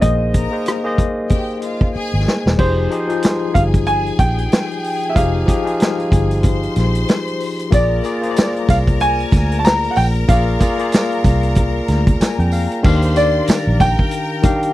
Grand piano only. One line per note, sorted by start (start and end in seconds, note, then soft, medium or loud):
0.01 1.91 D#5 medium
2.59 3.51 C5 medium
3.54 3.62 F5 medium
3.87 4.17 G#5 loud
4.19 5.12 G5 loud
5.09 5.16 E5 medium
5.16 7.04 F5 medium
7.74 8.72 D5 medium
8.70 8.77 F5 medium
9.01 9.55 G#5 loud
9.59 9.65 A5 medium
9.65 9.92 A#5 loud
9.91 9.97 F#5 medium
9.97 10.04 G5 medium
10.29 12.17 F5 medium
13.17 13.83 D5 medium
13.81 14.73 G5 loud